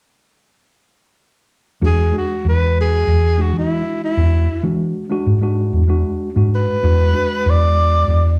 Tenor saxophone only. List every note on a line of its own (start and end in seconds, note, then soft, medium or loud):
1.86 2.15 G#4 medium
2.18 2.46 F#4 medium
2.48 2.77 B4 medium
2.81 3.43 G#4 medium
3.42 3.55 F#4 medium
3.58 4.02 E4 medium
4.04 4.64 E4 medium
6.55 7.52 B4 medium
7.50 8.39 D5 medium